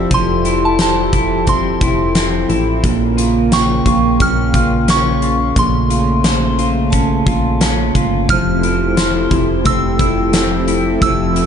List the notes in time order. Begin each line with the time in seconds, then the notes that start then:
Already playing: F3 C4 E4 G4 A4 C5 D5 E6
0.11 F1 F3 C6, kick, closed hi-hat
0.45 E4, closed hi-hat
0.65 A5
0.79 C5 A5, snare, closed hi-hat
1.13 E4, kick, closed hi-hat
1.47 C4 C6, kick, closed hi-hat
1.81 F1 E4, kick, closed hi-hat
2.15 C4, snare, closed hi-hat
2.49 A1 E4, closed hi-hat
2.83 A#1 A#2 C#3 A#3, kick, closed hi-hat
3.17 F4, closed hi-hat
3.52 G5 C#6, snare, closed hi-hat
3.86 A#1 F4, kick, closed hi-hat
4.20 A#1 C#4 F6, kick, closed hi-hat
4.54 F4, kick, closed hi-hat
4.88 C#4 C#6, snare, closed hi-hat
5.22 F4, closed hi-hat
5.56 A#1 A#2 A3 C6, kick, closed hi-hat
5.90 F4, closed hi-hat
6.24 C5, snare, closed hi-hat
6.59 F4, closed hi-hat
6.90 C#4 A5, kick, closed hi-hat
7.26 A#1 F4, kick, closed hi-hat
7.61 C#4, snare, closed hi-hat
7.95 G1 F4, kick, closed hi-hat
8.28 F1 F3 A3 C4 E4 G4 A4 F6, kick, closed hi-hat
8.32 C5
8.63 E4, closed hi-hat
8.97 C5, snare, closed hi-hat
9.29 F1 E4 C5, kick, closed hi-hat
9.35 C4
9.64 F1 A3 C4 G5 E6, kick, closed hi-hat
9.68 E4 C5
9.99 E4, kick, closed hi-hat
10.32 A3 C4, snare, closed hi-hat
10.36 E4 C5
10.68 E4, closed hi-hat
11.01 F1 F3 A3 C4 E4 E5 E6, kick, closed hi-hat
11.05 C5
11.36 E4, closed hi-hat